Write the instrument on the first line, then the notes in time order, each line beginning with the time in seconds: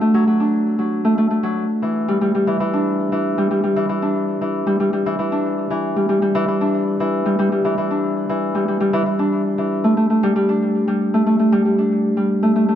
harp
Already playing: F#3 D4
0.01 A3
0.14 F#3
0.27 F#3
0.40 D4
0.79 F#3
1.05 A3
1.18 A3
1.30 A3
1.43 F#3
1.82 E3
2.08 G3
2.21 G3
2.35 G3
2.47 E3
2.60 E3
2.73 D4
3.12 E3
3.38 G3
3.51 G3
3.64 G3
3.76 E3
3.89 E3
4.02 D4
4.41 E3
4.67 G3
4.80 G3
4.93 G3
5.06 E3
5.19 E3
5.32 D4
5.70 E3
5.96 G3
6.09 G3
6.22 G3
6.35 E3
6.48 E3
6.61 D4
7.00 E3
7.26 G3
7.39 G3
7.52 G3
7.65 E3
7.78 E3
7.91 D4
8.29 E3
8.55 G3
8.68 G3
8.80 G3
8.93 E3
9.06 E3
9.19 D4
9.58 E3
9.84 A3
9.97 A3
10.10 A3
10.23 G3
10.36 G3
10.49 D4
10.88 G3
11.14 A3
11.26 A3
11.39 A3
11.52 G3
11.65 G3
11.78 D4
12.17 G3
12.43 A3
12.56 A3
12.68 A3